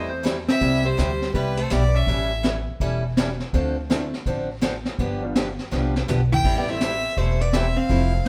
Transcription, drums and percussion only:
0.25 snare medium
0.25 hi-hat pedal medium
0.48 snare soft
0.61 brush sweep soft
0.61 kick soft
0.98 snare medium
0.98 hi-hat pedal medium
1.22 snare soft
1.34 brush sweep medium
1.34 kick soft
1.70 snare medium
1.70 hi-hat pedal medium
2.07 brush sweep soft
2.07 kick soft
2.44 snare medium
2.44 hi-hat pedal medium
2.80 brush sweep soft
2.80 kick soft
3.17 snare medium
3.17 hi-hat pedal soft
3.40 snare soft
3.53 brush sweep soft
3.53 kick soft
3.90 snare medium
3.90 hi-hat pedal medium
4.14 snare soft
4.25 brush sweep medium
4.25 kick soft
4.62 snare medium
4.62 hi-hat pedal medium
4.85 snare soft
4.98 brush sweep soft
4.98 kick soft
5.35 snare medium
5.35 hi-hat pedal medium
5.59 snare soft
5.72 snare medium
5.96 snare medium
6.08 floor tom medium
6.08 hi-hat pedal medium
6.32 floor tom medium
6.44 brush sweep soft
6.44 kick medium
6.44 crash medium
6.81 snare medium
6.81 hi-hat pedal medium
7.17 brush sweep medium
7.17 kick soft
7.53 snare medium
7.53 hi-hat pedal medium
7.90 brush sweep soft
7.90 kick soft

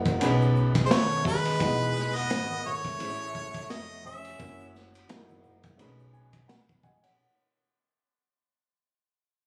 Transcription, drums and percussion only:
0.05 kick medium
0.05 ride medium
0.05 shaker soft
0.21 ride medium
0.21 shaker medium
0.41 shaker soft
0.56 shaker soft
0.75 kick loud
0.75 snare soft
0.75 ride medium
0.75 high conga medium
0.75 shaker soft
0.91 snare loud
0.91 hi-hat pedal medium
0.91 ride medium
0.91 shaker medium
1.12 shaker soft
1.25 kick medium
1.25 high conga medium
1.25 low conga medium
1.25 shaker soft
1.45 ride medium
1.45 shaker soft
1.60 kick loud
1.60 ride medium
1.60 shaker medium
1.82 high conga soft
1.82 shaker soft
1.96 snare soft
1.96 shaker soft
2.16 ride soft
2.16 shaker soft
2.30 snare loud
2.30 hi-hat pedal soft
2.30 ride medium
2.30 low conga medium
2.30 shaker medium
2.50 high conga medium
2.50 shaker soft
2.65 low conga medium
2.65 shaker soft
2.84 kick medium
2.84 snare soft
2.84 ride medium
2.84 shaker soft
3.00 ride medium
3.00 shaker medium
3.20 shaker soft
3.35 kick medium
3.35 shaker soft
3.54 kick medium
3.54 ride medium
3.54 high conga medium
3.54 shaker soft
3.70 snare loud
3.70 hi-hat pedal medium
3.70 ride medium
3.70 shaker medium
3.91 shaker soft
4.05 high conga medium
4.05 low conga medium
4.05 shaker soft
4.25 ride medium
4.25 shaker soft
4.39 kick loud
4.39 ride medium
4.39 shaker medium
4.60 high conga soft
4.60 shaker soft
4.75 snare soft
4.75 shaker soft
4.94 ride soft
4.94 shaker soft
5.09 snare loud
5.09 hi-hat pedal soft
5.09 ride medium
5.09 low conga medium
5.09 shaker medium
5.29 high conga medium
5.29 shaker soft
5.44 low conga medium
5.44 shaker soft
5.63 kick medium
5.63 ride medium
5.63 shaker soft
5.79 ride medium
5.79 shaker medium
5.99 shaker soft
6.14 shaker soft
6.33 kick medium
6.33 ride medium
6.33 high conga medium
6.33 shaker soft
6.49 snare loud
6.49 hi-hat pedal medium
6.49 ride medium
6.49 shaker medium
6.69 kick medium
6.69 shaker soft
6.83 kick medium
6.83 high conga medium
6.83 low conga medium
6.83 shaker soft
7.04 ride medium
7.04 shaker soft

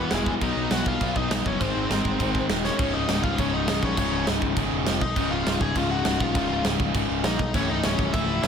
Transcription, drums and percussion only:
0.11 snare loud
0.11 crash medium
0.26 kick medium
0.41 kick loud
0.41 crash medium
0.71 snare loud
0.71 crash medium
0.86 kick medium
1.01 kick medium
1.01 crash medium
1.16 kick medium
1.31 snare loud
1.31 crash medium
1.46 kick medium
1.61 kick loud
1.61 crash medium
1.91 snare loud
1.91 crash medium
2.05 kick medium
2.20 kick loud
2.20 crash medium
2.35 kick medium
2.49 snare loud
2.49 crash medium
2.64 snare medium
2.79 kick loud
2.79 crash medium
3.09 snare loud
3.09 crash medium
3.24 kick medium
3.38 kick medium
3.38 crash medium
3.68 snare loud
3.68 crash medium
3.83 kick medium
3.97 kick loud
3.97 crash medium
4.27 snare loud
4.27 crash medium
4.42 kick medium
4.57 kick loud
4.57 crash medium
4.86 snare loud
4.86 crash medium
5.01 kick medium
5.16 kick loud
5.16 crash medium
5.47 snare loud
5.47 crash medium
5.61 kick medium
5.76 kick medium
5.76 crash medium
6.05 snare loud
6.05 crash medium
6.20 kick medium
6.35 kick loud
6.35 crash medium
6.65 snare loud
6.65 crash medium
6.80 kick medium
6.94 kick loud
6.94 crash medium
7.24 snare loud
7.24 crash medium
7.39 kick medium
7.54 kick loud
7.54 crash medium
7.83 snare loud
7.83 crash medium
7.99 kick medium
8.14 kick loud
8.14 crash medium
8.43 snare loud
8.43 crash medium

